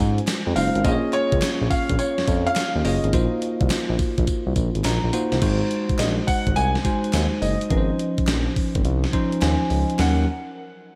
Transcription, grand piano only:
Already playing: G#5
0.56 F5
0.84 D#5
1.13 C#5
1.70 F5
1.99 C#5
2.46 F5
2.85 D#5
5.99 D#5
6.27 F#5
6.56 G#5
7.42 D#5
10.00 F#5

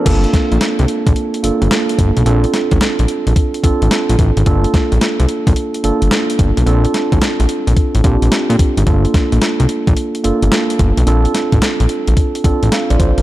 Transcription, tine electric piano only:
Already playing: C4
0.05 A#3 D4 F4 A4
1.43 A#3 D4 F4 A4
2.26 C4 D4 F4 A4
3.63 C4 D4 F4 A4
4.46 A#3 D4 F4 A4
5.83 A#3 D4 F4 A4
6.66 C4 D4 F4 A4
8.04 C4 D4 F4 G4
8.86 A3 D4 F4 A4
8.93 A#3
10.24 A#3 D4 F4 A4
11.06 C4 D4 F4 A4
12.44 C4 D4 F4 A4
12.72 A4 F5
12.90 F4 D5
13.00 C5
13.18 D4 A#4

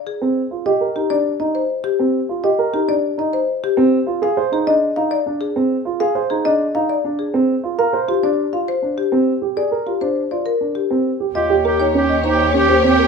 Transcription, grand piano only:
0.22 C4
0.51 F4
0.66 G4
0.81 A#4
0.95 D#4
1.10 D4
1.40 D#4
1.99 C4
2.29 F4
2.44 G4
2.59 A#4
2.73 D#4
2.88 D4
3.18 D#4
3.77 C4
4.07 F4
4.22 G#4
4.37 C5
4.52 D#4
4.67 D4
4.97 D#4
5.26 D4
5.56 C4
5.85 F4
6.00 G#4
6.15 C5
6.30 D#4
6.45 D4
6.75 D#4
7.05 D4
7.34 C4
7.64 F4
7.78 A#4
7.93 C5
8.08 F4
8.23 D4
8.53 F4
8.82 D4
9.12 C4
9.42 G4
9.57 G#4
9.71 A#4
9.86 F4
10.01 D4
10.31 F4
10.61 D4
10.91 C4
11.20 G4
11.35 F4
11.50 G4
11.65 A#4
11.80 D#4
11.94 C#4
12.24 D#4
12.54 C#4
12.69 G4
12.84 C4
12.99 A#4

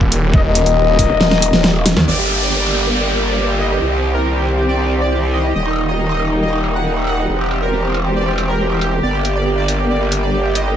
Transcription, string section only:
Already playing: D#3 G3 A#3
2.07 D3 G3 A#3
3.81 D#3 C4
5.55 G3 A#3
7.29 E3 C4
9.03 D3 G3 A#3

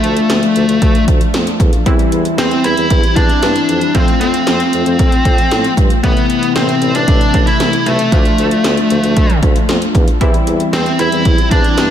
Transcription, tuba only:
0.04 D2
0.30 D2
0.56 D2
0.69 D2
0.82 D2
1.08 D2
1.34 F2
1.60 E2
1.86 E2
2.12 E2
2.38 E2
2.64 E2
2.77 E2
2.91 E2
3.16 E2
3.43 G2
3.69 F2
3.95 F2
4.21 F2
4.47 F2
4.73 F2
4.86 F2
4.99 F2
5.25 F2
5.51 A2
5.77 G2
6.04 A1
6.56 A1
6.82 A1
6.95 A1
7.08 A1
7.34 A1
7.60 C2
7.86 B1
8.12 D2
8.38 D2
8.64 D2
8.91 D2
9.04 D2
9.17 D2
9.43 D2
9.69 F2
9.95 E2
10.21 E2
10.47 E2
10.73 E2
10.99 E2
11.12 E2
11.25 E2
11.51 E2
11.78 G2

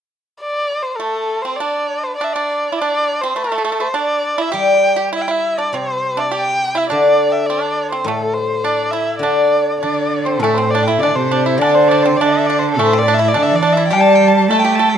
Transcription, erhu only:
0.41 D5
0.83 C5
0.97 A4
1.42 C5
1.56 D5
2.04 C5
2.16 D5
2.24 E5
2.33 D5
2.79 D5
3.21 C5
3.38 A4
3.81 C5
3.96 D5
4.42 E5
4.55 G5
5.16 E5
5.22 G5
5.31 E5
5.58 D5
5.76 C5
6.17 D5 E5
6.33 G5
6.77 E5
6.90 D5
7.30 E5 G5
7.46 D5
7.92 C5
8.07 A4
8.34 C5
8.64 D5
8.91 E5
9.19 D5
9.81 D5
10.25 C5
10.40 A4
10.54 C5
10.70 D5
10.84 G5
11.00 D5
11.16 C5
11.32 D5
11.46 E5
11.59 D5
11.75 C5
11.88 D5
12.03 C5
12.17 D5
12.33 E5
12.46 D5
12.59 C5
12.71 A4
12.86 C5
12.99 D5
13.14 E5
13.29 D5
13.43 E5
13.56 D5
13.73 E5
13.88 G5
14.01 A5
14.15 G5
14.28 A5
14.45 A5
14.59 G5
14.75 A5
14.89 G5

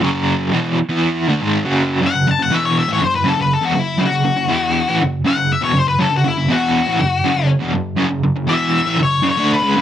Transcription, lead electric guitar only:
2.06 F#5
2.31 A5
2.42 F#5
2.55 E5
2.65 C#5
2.79 E5
2.93 C#5
3.02 C5
3.15 B4
3.28 A4
3.41 B4
3.53 A4
3.65 F#4
3.79 E4
4.05 F#4
5.27 F#5
5.53 E5
5.64 C#5
5.78 C5
5.88 B4
6.01 A4
6.17 F#4
6.28 E4
6.52 F#4
8.49 E5
9.03 C#5
9.29 C#5
9.53 B4

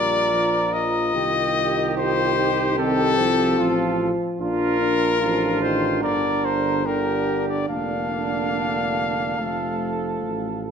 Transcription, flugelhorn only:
Already playing: A#4
1.15 G4
3.59 F4
4.40 F4
5.22 F4
6.02 A#4
6.86 G4
7.69 D4
9.39 A4

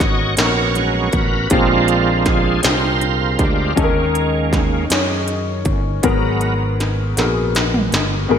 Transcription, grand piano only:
Already playing: G#2 B3 C#4 F#4 A#4
0.37 B3 C#4 F#4 A#4
1.50 A#2 C4 D4 G4 G#4
2.63 C4 D4 G4 G#4
3.75 D#3 C#4 D#4 G#4 A4
3.84 A#4
4.89 C#4 D#4 G#4 C#5
6.03 G#2 B3 F#4 G#4 A#4
7.17 B3 F#4 G#4 A#4
8.28 G#2 B3 F#4 G#4 A#4

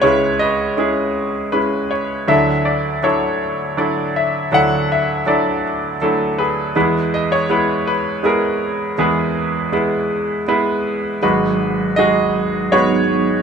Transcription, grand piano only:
Already playing: G#3 C#4 E4 B4 C#5 D#5 E5
0.01 C#2 C#3 G#3 C#4 E4 B4 C#5
0.39 B4 D#5
0.77 G#3 C#4 E4 G#4
1.52 G#3 C#4 E4 B4
1.91 C#5
2.27 D2 D3 F#3 D4 E4 A4 E5
2.65 D5
3.03 F#3 D4 E4 A4 C#5
3.77 F#3 D4 E4 A4 D5
4.16 E5
4.52 D2 D3 F#3 D4 E4 A4 F#5
4.92 E5
5.26 F#3 D4 E4 A4 D5
6.02 F#3 A3 D4 E4 A4
6.38 G#4 B4
6.76 E2 E3 G#3 B3 E4 B4
7.14 D#5
7.32 C#5
7.50 G#3 B3 E4 B4
7.87 B4
8.23 G#3 B3 E4 G#4 A#4
8.98 E2 E3 G#3 B3 E4 G#4 B4
9.72 G#3 B3 E4 B4
10.48 G#3 B3 E4 B4
11.22 G#1 G#2 G#3 D#4 F#4 B4
11.96 G#3 D#4 F#4 G#4 D#5
12.72 G#3 D#4 F#4 B4 C#5

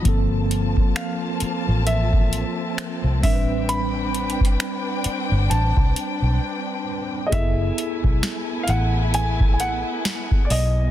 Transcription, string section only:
0.05 A#3 C4 F4 A5
3.23 D4 B4 G5
7.32 A3 B3 E4 G#5

